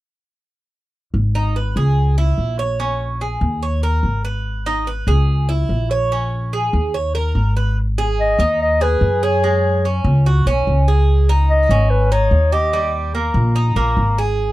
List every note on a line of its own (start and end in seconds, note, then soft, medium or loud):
1.14 1.72 G#1 medium
1.35 1.55 D#4 medium
1.56 1.76 B4 soft
1.76 2.34 C#2 medium
1.76 2.17 G#4 medium
2.18 2.58 E4 medium
2.38 3.36 A#1 medium
2.59 2.79 C#5 medium
2.80 3.20 C#4 medium
3.21 3.62 G#4 soft
3.41 4.00 D#2 medium
3.63 3.83 C#5 medium
3.83 4.24 A#4 medium
4.03 5.01 G#1 medium
4.25 4.65 B4 medium
4.66 4.87 D#4 medium
4.87 5.07 B4 soft
5.07 5.66 C#2 medium
5.07 5.48 G#4 medium
5.49 5.89 E4 medium
5.69 6.67 A#1 medium
5.91 6.11 C#5 medium
6.12 6.52 C#4 medium
6.53 6.93 G#4 medium
6.73 7.32 D#2 medium
6.94 7.14 C#5 medium
7.15 7.55 A#4 medium
7.35 8.33 G#1 medium
7.57 7.77 B4 medium
7.98 8.38 G#4 medium
8.20 8.58 D#5 medium
8.39 8.97 D#2 medium
8.39 8.80 D#4 medium
8.62 8.83 D#5 medium
8.81 9.21 G#4 medium
8.81 9.25 B4 medium
9.01 9.99 F#2 medium
9.23 9.43 G#4 medium
9.23 10.06 C#5 medium
9.44 9.83 G#3 medium
9.85 10.25 C#4 medium
10.04 10.43 C#2 medium
10.26 10.46 F#4 medium
10.46 10.65 B1 medium
10.46 10.87 C#4 medium
10.67 11.64 C#2 medium
10.88 11.28 G#4 medium
11.29 11.69 D#4 medium
11.50 11.91 D#5 medium
11.69 12.28 G#1 medium
11.69 12.11 C#4 medium
11.90 12.13 B4 medium
12.12 12.52 D#4 medium
12.12 12.54 C#5 medium
12.31 13.29 D#2 medium
12.52 12.73 G4 medium
12.52 12.94 D#5 medium
12.73 13.14 G3 medium
13.15 13.55 A#3 soft
13.34 13.73 A#1 medium
13.56 13.76 D#4 medium
13.76 13.96 A#1 medium
13.76 14.17 A#3 medium
13.97 14.52 G#1 medium
14.18 14.52 G#4 medium